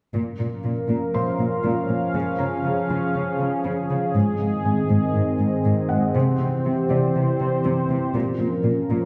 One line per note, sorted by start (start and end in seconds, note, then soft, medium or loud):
0.14 0.22 A#2 medium
0.14 4.10 F3 medium
0.14 4.10 C#4 medium
0.14 2.10 A#4 medium
0.14 4.10 F5 medium
0.39 0.47 A#2 soft
0.64 0.72 A#2 soft
0.89 0.97 A#2 soft
1.14 1.22 A#2 soft
1.14 2.60 C5 soft
1.14 2.60 C6 soft
1.39 1.47 A#2 soft
1.64 1.72 A#2 medium
1.89 1.97 A#2 soft
2.14 2.22 C#3 medium
2.14 6.14 G#4 medium
2.38 2.47 C#3 soft
2.38 3.85 A#5 soft
2.65 2.73 C#3 soft
2.90 2.98 C#3 soft
3.15 3.23 C#3 soft
3.40 3.48 C#3 soft
3.64 3.72 C#3 medium
3.90 3.98 C#3 soft
4.15 4.23 G#2 medium
4.15 6.15 D#3 medium
4.15 8.15 C4 medium
4.15 6.15 D#5 medium
4.39 4.47 G#2 soft
4.65 4.73 G#2 soft
4.65 6.11 G#5 soft
4.89 4.97 G#2 medium
5.14 5.22 G#2 soft
5.39 5.47 G#2 soft
5.65 5.73 G#2 medium
5.89 5.98 G#2 soft
5.89 7.35 F#5 soft
6.14 6.23 C3 medium
6.14 8.14 E3 medium
6.14 7.60 C4 soft
6.14 8.14 G4 medium
6.14 7.60 C5 soft
6.14 8.14 C5 medium
6.40 6.48 C3 soft
6.65 6.73 C3 soft
6.90 6.98 C3 medium
6.90 8.35 D5 soft
7.15 7.23 C3 soft
7.40 7.48 C3 soft
7.65 7.73 C3 medium
7.90 7.98 C3 soft
8.15 8.23 A#2 medium
8.15 9.05 F3 medium
8.15 9.05 C#4 medium
8.15 9.05 F4 medium
8.15 9.05 A#4 medium
8.40 8.48 A#2 soft
8.64 8.72 A#2 soft
8.90 8.98 A#2 medium